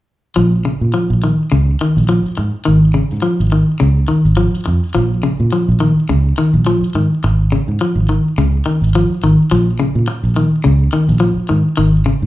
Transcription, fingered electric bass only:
0.37 A#1
0.81 A#2
1.10 A#1
1.52 C#2
1.97 A#1
2.26 muted fingered electric bass stroke
2.38 G#2
2.68 G#1
3.12 G#2
3.40 G#1
3.81 C#2
4.10 muted fingered electric bass stroke
4.25 G#1
4.54 muted fingered electric bass stroke
4.67 F2
4.96 A#1
5.40 A#2
5.69 A#1
6.10 C#2
6.38 muted fingered electric bass stroke
6.54 A#1
6.82 muted fingered electric bass stroke
6.95 G#2
7.24 G#1
7.68 G#2
7.95 G#1
8.38 C#2
8.82 G#1
9.10 muted fingered electric bass stroke
9.24 G#1
9.52 A#1
9.95 A#2
10.23 A#1
10.66 C#2
11.09 A#1
11.37 muted fingered electric bass stroke
11.50 G#2
11.79 G#1
12.22 G#2

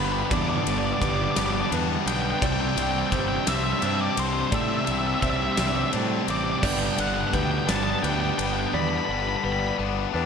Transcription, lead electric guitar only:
0.05 B4
0.12 B4
0.20 B4
0.25 B4
0.34 D5
0.42 D5
0.49 D5
0.56 D5
0.64 D5
0.72 D5
0.78 D5
0.85 D5
0.93 D5
1.01 D5
1.09 D5
1.16 D5
1.24 D5
1.32 D5
1.39 D5
1.46 D5
1.53 D5
1.61 D5
2.08 G5
2.15 G5
2.22 G5
2.30 G5
2.39 G5
2.46 G5
2.52 G5
2.61 G5
2.68 G5
2.75 G5
2.83 G5
2.91 G5
2.99 G5
3.07 G5
3.13 G5
3.20 G5
3.28 G5
3.36 G5
3.48 E5
3.56 E5
3.63 E5
3.72 E5
3.79 E5
3.86 E5
3.95 E5
4.01 D5
4.19 C5
4.27 C5
4.33 C5
4.41 C5
4.47 C5
4.54 E5
4.61 E5
4.69 E5
4.77 E5
4.85 E5
4.92 E5
4.99 E5
5.07 E5
5.14 E5
5.21 E5
5.30 E5
5.37 E5
5.44 E5
5.52 E5
5.59 E5
5.67 E5
5.76 E5
5.82 E5
6.30 D5
6.37 D5
6.44 D5
6.52 D5
6.59 D5
6.64 G5
6.71 G5
6.79 G5
6.86 G5
6.93 G5
7.00 F#5
7.08 F#5
7.14 F#5
7.21 F#5
7.28 F#5
7.35 G5
7.43 G5
7.51 G5
7.58 G5
7.70 A5
7.76 A5
7.83 A5
7.90 A5
7.99 A5
8.03 G5
8.13 G5
8.20 G5
8.30 G5
8.38 G5
8.46 G5
8.53 G5
8.60 G5
8.67 G5
8.74 B5
8.80 B5
8.89 B5
8.97 B5
9.05 B5
9.12 B5
9.20 B5
9.28 B5
9.36 B5
9.44 B5
9.52 B5
9.60 B5
9.67 B5

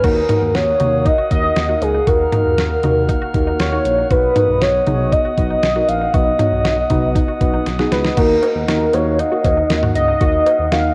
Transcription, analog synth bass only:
0.04 D#2
0.42 D#2
0.55 D#2
0.80 D#2
1.31 D#2
1.56 D#2
1.82 C#2
2.07 D#2
2.45 D#2
2.58 D#2
2.83 D#2
3.34 D#2
3.60 D#2
3.85 A#1
4.11 B1
4.49 B1
4.61 B1
4.87 B1
5.38 B1
5.63 B1
5.89 A#1
6.14 B1
6.52 B1
6.65 B1
6.90 B1
7.41 B1
7.67 B1
7.92 C#2
8.17 D#2
8.55 D#2
8.68 D#2
8.94 D#2
9.44 D#2
9.70 D#2
9.95 C#2
10.21 D#2
10.59 D#2
10.72 D#2

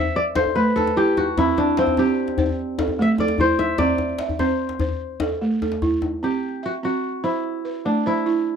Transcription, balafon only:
Already playing: C5
0.36 A4
0.56 A3
0.77 A4
0.96 E4
1.38 C4
1.78 E5
1.98 C4 C5
2.39 C5
2.79 A4
2.99 A3
3.20 A4
3.40 E4
3.79 C4
4.20 E5
4.40 C4 C5
4.80 C5
5.21 A4
5.42 A3
5.62 A4
5.82 E4
6.23 C4
6.63 E5
6.83 C4
7.24 C5
7.65 B4
7.85 A3
8.06 C5
8.26 E4

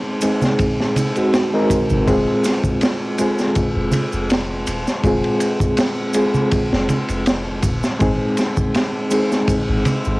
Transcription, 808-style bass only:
1.91 G#1
2.08 F1
3.76 F1
4.13 F1
4.68 D#1
5.04 F1
6.73 F1
7.10 F1
7.63 D#1
8.01 G#1
9.69 G#1
10.07 G#1

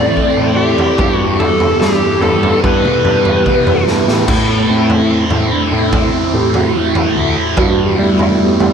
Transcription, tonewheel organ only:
Already playing: C4 E4 A4
0.99 B3 G4
4.69 A3 C4 E4
5.52 D4
5.73 E4
6.35 G4
6.56 F#4
6.77 E4
7.59 F#4
7.86 G4
8.00 A3 B3 E4
8.14 F#4
8.40 G4

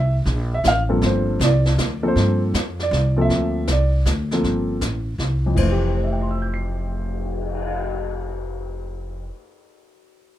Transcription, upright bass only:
Already playing: C2
0.25 A#1
0.64 A1
1.01 G1
1.39 C2
1.78 D2
2.16 G2
2.54 F2
2.91 C2
3.30 D2
3.67 C2
4.05 D2
4.43 G1
4.81 A1
5.18 C2
5.56 F1

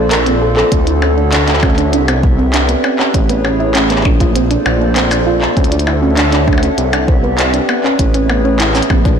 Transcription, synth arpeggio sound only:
0.11 A#4
0.26 C4
0.42 A4
0.57 A4
0.72 D4
0.87 E4
1.02 C#4
1.17 D4
1.33 D4
1.48 D4
1.63 C#4
1.78 D4
1.93 D4
2.08 C4
2.23 B3
2.39 C4
2.54 D4
2.69 B3
2.84 C#4
2.99 C#4
3.14 C#4
3.30 B3
3.45 C#4
3.60 E4
3.75 C#4
3.90 B3
4.05 D4
4.20 F4
4.36 C4
4.51 D4
4.66 D4
4.81 D4
4.96 C4
5.11 D4
5.26 F4
5.42 D4
5.57 C#4
5.72 D4
5.87 E4
6.02 C#4
6.17 D4
6.32 D4
6.48 D4
6.63 C#4
6.78 C4
6.93 D4
7.08 C4
7.23 B3
7.39 C4
7.54 D4
7.69 B3
7.84 C#4
7.99 C#4
8.14 C#4
8.29 B3
8.45 C#4
8.60 E4
8.75 C#4
8.90 C4
9.05 D4

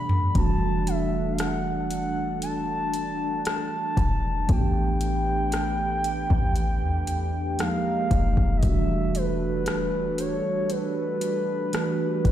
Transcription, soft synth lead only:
Already playing: B5
0.30 B5
0.37 A5
0.88 E5
1.32 F5
1.39 F#5
1.91 F#5
2.43 A5
3.46 A5
4.50 G5
7.60 F5
8.57 D#5
8.63 E5
9.15 B4
10.19 C#5
10.71 B4

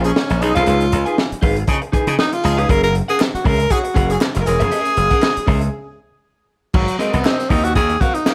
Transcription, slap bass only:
Already playing: A#1
0.30 A#1
0.42 B1
0.56 C2
0.67 C#2
0.93 C#2
1.32 muted slap bass stroke
1.43 G#1
1.68 C#3
1.94 muted slap bass stroke
2.07 C#3
2.45 C#2
2.70 F#1
3.35 muted slap bass stroke
3.46 C#2
3.96 F#1
4.36 F#1
4.47 E1
4.61 F1
4.97 F#1
5.37 muted slap bass stroke
5.48 C#2
6.74 G#1
7.14 C2
7.50 D#2
7.76 D#2

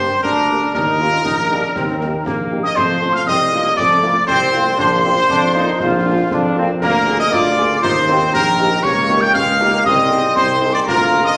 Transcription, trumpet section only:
Already playing: C5
0.23 A#4
0.75 A#4
2.65 D#5
2.76 C5
3.16 F5
3.27 D#5
3.77 D5
4.26 C5
4.79 C5
6.82 A#4
7.19 D#5
7.32 D5
7.82 C5
8.33 A#4
8.83 C#5
9.23 G5
9.34 F5
9.85 D#5
10.36 C5
10.74 D5
10.88 A#4
11.25 D#5

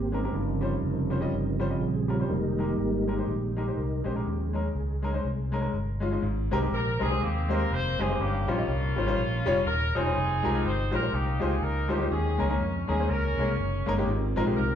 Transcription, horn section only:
6.74 A#4
7.02 G#4
7.22 A#3 C4 G4
7.52 A#4
7.73 C5
8.01 G#4
8.20 A#3 C#4 G4
8.48 A#3 C#4 F4
9.67 A#4
9.95 C4 D#4 G#4
10.65 C5
10.94 A#4
11.14 A#3 D#4 G4
11.41 G#4
11.63 A#4
11.91 G4
12.11 C#4 G#4
12.88 G#4
13.09 C#4 A#4
14.56 A#4

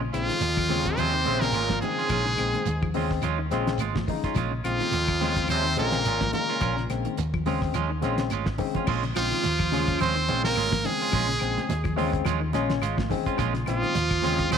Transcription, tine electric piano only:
0.13 C#3 G#3 C4
0.70 C#3 G#3 C4
1.26 C#3 G#3 C4
1.82 C#3 G#3 C4
2.37 C#3 G#3 C4
2.94 C#3 G#3 C4
3.51 C#3 G#3 C4
4.09 C#3 G#3 D#4
4.65 C#3 G#3 C4
5.20 C#3 G#3 C4
5.76 C#3 G#3 C4
6.33 C#3 G#3 A#3
6.89 C#3 G#3 C4
7.46 C#3 G#3 C4
8.02 C#3 G#3 C4
8.58 C#3 G#3 C4
9.15 C#3 G#3 C4
9.72 C#3 G#3 C#4
10.28 C#3 G#3 C4
10.84 C#3 G#3 C4
11.40 C#3 G#3 C4
11.97 C#3 G#3 C4
12.54 C#3 G#3 C#4 D#5
12.83 F5
13.10 C#3 G#3 C4 G#5
13.66 C#3 G#3 C4
14.23 C#3 G#3 C4

